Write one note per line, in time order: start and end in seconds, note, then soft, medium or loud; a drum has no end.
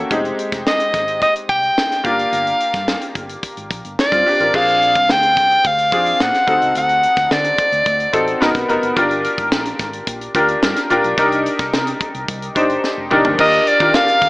0.00 0.13 A#3 medium
0.00 0.12 C#4 medium
0.00 0.13 F#4 medium
0.00 0.12 G4 medium
0.00 0.13 A4 medium
0.10 0.30 F1 loud
0.10 1.15 G#3 medium
0.10 1.15 C4 medium
0.10 1.15 D#4 medium
0.10 1.15 G4 medium
0.10 kick loud
0.10 closed hi-hat medium
0.25 closed hi-hat soft
0.39 closed hi-hat medium
0.52 0.62 F1 medium
0.52 kick medium
0.52 snare soft
0.52 closed hi-hat medium
0.67 1.18 D#5 medium
0.67 snare medium
0.80 closed hi-hat medium
0.94 1.23 G#1 medium
0.94 kick medium
0.94 snare soft
0.94 closed hi-hat medium
1.08 closed hi-hat soft
1.21 1.35 D#5 medium
1.21 kick medium
1.21 closed hi-hat medium
1.36 closed hi-hat soft
1.49 1.69 C2 medium
1.49 2.06 G5 loud
1.49 kick medium
1.49 closed hi-hat medium
1.63 closed hi-hat soft
1.78 snare loud
1.92 snare soft
1.92 closed hi-hat soft
2.04 2.24 G1 medium
2.04 3.08 A#3 medium
2.04 3.08 D4 medium
2.04 3.09 F4 medium
2.04 3.09 G4 medium
2.04 3.16 F5 medium
2.04 kick medium
2.04 closed hi-hat medium
2.19 closed hi-hat soft
2.32 2.52 G1 loud
2.32 closed hi-hat medium
2.47 closed hi-hat soft
2.60 closed hi-hat medium
2.74 2.94 G2 loud
2.74 kick medium
2.74 snare soft
2.74 closed hi-hat soft
2.88 snare medium
3.01 closed hi-hat medium
3.15 3.35 G1 medium
3.15 kick medium
3.15 closed hi-hat medium
3.29 closed hi-hat soft
3.43 kick medium
3.43 closed hi-hat medium
3.57 3.67 G#1 medium
3.57 closed hi-hat soft
3.71 3.80 A#1 medium
3.71 kick medium
3.71 closed hi-hat medium
3.85 3.94 G1 medium
3.85 closed hi-hat soft
3.99 4.57 D5 medium
3.99 snare loud
4.12 4.22 G2 medium
4.12 4.26 C4 soft
4.12 4.25 F4 medium
4.12 kick medium
4.12 snare soft
4.12 closed hi-hat medium
4.26 4.40 D4 medium
4.26 4.39 G4 medium
4.26 open hi-hat soft
4.40 4.50 A1 medium
4.40 4.53 F4 soft
4.40 4.66 A#4 medium
4.40 closed hi-hat soft
4.54 4.96 A#1 loud
4.54 5.58 C4 medium
4.54 5.58 D4 medium
4.54 5.58 F4 medium
4.54 5.58 G#4 medium
4.54 5.13 F5 loud
4.54 kick loud
4.54 crash medium
4.68 closed hi-hat soft
4.82 closed hi-hat medium
4.95 5.09 C2 medium
4.95 kick medium
4.95 closed hi-hat medium
5.09 5.37 D2 loud
5.09 5.68 G5 loud
5.09 snare medium
5.23 closed hi-hat medium
5.37 5.56 C2 medium
5.37 kick medium
5.37 snare soft
5.37 closed hi-hat medium
5.51 closed hi-hat soft
5.64 5.92 D2 loud
5.64 6.24 F5 loud
5.64 kick medium
5.64 closed hi-hat medium
5.78 closed hi-hat soft
5.92 6.12 F2 medium
5.92 6.44 C4 medium
5.92 6.44 D4 medium
5.92 6.45 F4 medium
5.92 6.45 G#4 medium
5.92 kick medium
5.92 closed hi-hat medium
6.06 closed hi-hat soft
6.20 6.30 A#2 medium
6.20 6.77 F#5 loud
6.20 snare loud
6.34 snare soft
6.34 closed hi-hat medium
6.47 6.57 D2 medium
6.47 7.51 C4 medium
6.47 7.52 D#4 medium
6.47 7.52 F#4 medium
6.47 7.52 A4 medium
6.47 kick medium
6.47 closed hi-hat medium
6.62 6.72 C#2 medium
6.62 closed hi-hat medium
6.75 7.05 D2 medium
6.75 7.34 F#5 medium
6.75 closed hi-hat medium
6.89 closed hi-hat soft
7.03 closed hi-hat medium
7.16 7.27 D2 medium
7.16 kick medium
7.16 snare soft
7.16 closed hi-hat medium
7.31 7.51 D3 loud
7.31 8.42 D5 medium
7.31 snare loud
7.44 closed hi-hat medium
7.58 kick medium
7.58 closed hi-hat medium
7.72 7.82 D2 medium
7.72 closed hi-hat soft
7.86 8.06 D2 medium
7.86 kick medium
7.86 closed hi-hat medium
8.00 closed hi-hat soft
8.13 8.33 A1 medium
8.13 8.41 C4 medium
8.13 8.39 D#4 medium
8.13 8.40 F#4 medium
8.13 8.41 A4 medium
8.13 kick medium
8.13 closed hi-hat medium
8.27 closed hi-hat soft
8.40 8.51 G#1 medium
8.40 8.67 B3 medium
8.40 8.67 D#4 medium
8.40 8.67 F#4 medium
8.40 8.68 A#4 medium
8.40 8.67 B5 medium
8.40 snare medium
8.55 8.65 B1 medium
8.55 kick medium
8.55 snare soft
8.55 closed hi-hat medium
8.68 8.79 F1 medium
8.68 8.95 B3 medium
8.68 8.95 D#4 medium
8.68 8.95 F#4 medium
8.68 8.95 A#4 medium
8.68 8.95 F#5 medium
8.68 closed hi-hat soft
8.83 8.93 F#1 medium
8.83 closed hi-hat soft
8.96 9.26 G1 loud
8.96 10.00 D4 medium
8.96 10.01 F4 medium
8.96 10.01 G4 medium
8.96 10.01 A#4 loud
8.96 kick loud
8.96 closed hi-hat medium
9.11 closed hi-hat soft
9.24 closed hi-hat medium
9.38 9.52 G#1 medium
9.38 kick medium
9.38 closed hi-hat medium
9.52 9.72 A#1 loud
9.52 snare loud
9.65 closed hi-hat medium
9.79 9.99 G#1 medium
9.79 kick medium
9.79 snare soft
9.79 closed hi-hat medium
9.93 closed hi-hat soft
10.07 10.27 A#1 loud
10.07 kick medium
10.07 closed hi-hat loud
10.21 closed hi-hat soft
10.35 10.54 D2 medium
10.35 10.87 D4 medium
10.35 10.87 F4 medium
10.35 10.87 G4 medium
10.35 10.87 A#4 medium
10.35 kick medium
10.35 closed hi-hat medium
10.48 closed hi-hat soft
10.63 10.72 G2 medium
10.63 snare loud
10.76 snare soft
10.76 closed hi-hat medium
10.90 11.00 A#1 medium
10.90 11.16 D4 medium
10.90 11.16 F4 medium
10.90 11.16 G4 medium
10.90 11.17 A#4 medium
10.90 closed hi-hat medium
11.04 11.14 B1 medium
11.04 closed hi-hat medium
11.17 11.47 C2 medium
11.17 12.22 D4 loud
11.17 12.22 D#4 medium
11.17 12.22 G4 medium
11.17 12.22 A#4 loud
11.17 kick loud
11.17 closed hi-hat loud
11.32 closed hi-hat soft
11.46 closed hi-hat medium
11.59 11.69 C2 medium
11.59 kick loud
11.59 snare soft
11.59 closed hi-hat medium
11.73 11.93 C3 loud
11.73 snare loud
11.87 closed hi-hat medium
12.00 kick medium
12.00 closed hi-hat medium
12.14 12.24 C2 medium
12.14 closed hi-hat soft
12.28 12.48 C2 medium
12.28 kick medium
12.28 closed hi-hat medium
12.42 closed hi-hat medium
12.55 12.75 G1 medium
12.55 13.08 D4 medium
12.55 13.08 D#4 medium
12.55 13.08 G4 medium
12.55 13.08 C5 medium
12.55 kick medium
12.55 closed hi-hat medium
12.70 closed hi-hat soft
12.84 snare medium
12.98 13.07 F1 medium
13.11 13.21 C#2 medium
13.11 13.37 D4 medium
13.11 13.37 D#4 medium
13.11 13.37 G4 medium
13.11 13.37 A#4 medium
13.11 mid tom medium
13.25 13.35 D2 medium
13.25 floor tom medium
13.38 13.59 D#2 medium
13.38 13.77 D4 medium
13.38 13.78 F4 medium
13.38 13.78 G4 medium
13.38 13.78 A#4 medium
13.38 13.69 D#5 loud
13.38 kick loud
13.38 crash medium
13.53 closed hi-hat medium
13.67 13.97 D5 medium
13.67 closed hi-hat medium
13.80 13.90 D#3 medium
13.80 14.29 D4 medium
13.80 14.29 F4 medium
13.80 14.29 G4 medium
13.80 14.29 A#4 medium
13.80 kick medium
13.80 closed hi-hat medium
13.94 14.29 F5 loud
13.94 snare loud
14.08 closed hi-hat medium
14.21 14.29 D#2 medium
14.21 kick medium
14.21 snare soft
14.21 closed hi-hat medium